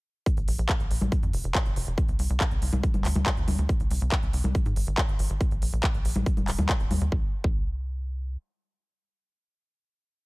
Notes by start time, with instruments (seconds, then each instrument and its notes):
0.26 kick, closed hi-hat
0.37 analog synth bass A#1, closed hi-hat
0.48 analog synth bass A#1, open hi-hat
0.58 analog synth bass A#1, closed hi-hat
0.69 kick, clap, closed hi-hat
0.80 analog synth bass A#1, closed hi-hat
0.91 analog synth bass A#1, open hi-hat
1.01 analog synth bass A#1, closed hi-hat, high conga
1.12 kick, closed hi-hat
1.23 analog synth bass F2, closed hi-hat
1.33 analog synth bass F1, open hi-hat
1.44 analog synth bass F1, closed hi-hat
1.55 kick, clap, closed hi-hat
1.66 analog synth bass F1, closed hi-hat
1.76 analog synth bass F1, open hi-hat
1.87 analog synth bass F1, closed hi-hat
1.98 kick, closed hi-hat
2.08 analog synth bass C2, closed hi-hat
2.19 analog synth bass C2, open hi-hat
2.30 analog synth bass C2, closed hi-hat
2.41 kick, clap, closed hi-hat
2.51 analog synth bass C2, closed hi-hat
2.62 analog synth bass C2, open hi-hat
2.73 analog synth bass C2, closed hi-hat, high conga
2.83 kick, closed hi-hat
2.94 analog synth bass D1, closed hi-hat, high conga
3.05 analog synth bass D2, clap, open hi-hat
3.16 analog synth bass D2, closed hi-hat, high conga
3.26 kick, clap, closed hi-hat
3.37 analog synth bass D2, closed hi-hat
3.48 analog synth bass D2, open hi-hat, high conga
3.58 analog synth bass D2, closed hi-hat
3.69 kick, closed hi-hat
3.80 analog synth bass C2, closed hi-hat
3.91 analog synth bass C2, open hi-hat
4.01 analog synth bass C2, closed hi-hat
4.12 kick, clap, closed hi-hat
4.23 analog synth bass C2, closed hi-hat
4.33 analog synth bass C2, open hi-hat
4.44 analog synth bass C2, closed hi-hat, high conga
4.55 kick, closed hi-hat
4.66 analog synth bass G#2, closed hi-hat
4.76 analog synth bass G#1, open hi-hat
4.87 analog synth bass G#1, closed hi-hat
4.98 kick, clap, closed hi-hat
5.08 analog synth bass G#1, closed hi-hat
5.19 analog synth bass G#1, open hi-hat
5.30 analog synth bass G#1, closed hi-hat
5.41 kick, closed hi-hat
5.51 analog synth bass A#1, closed hi-hat
5.62 analog synth bass A#1, open hi-hat
5.73 analog synth bass A#1, closed hi-hat
5.83 kick, clap, closed hi-hat
5.94 analog synth bass A#1, closed hi-hat
6.05 analog synth bass A#1, open hi-hat
6.16 analog synth bass A#1, closed hi-hat, high conga
6.26 kick, closed hi-hat
6.37 analog synth bass D#1, closed hi-hat, high conga
6.48 analog synth bass D#1, clap, open hi-hat
6.58 analog synth bass D#2, closed hi-hat, high conga
6.69 kick, clap, closed hi-hat
6.80 analog synth bass D#1, closed hi-hat
6.90 analog synth bass D#2, open hi-hat, high conga
7.01 analog synth bass D#2, closed hi-hat
7.12 analog synth bass C2, kick
7.44 analog synth bass C2, kick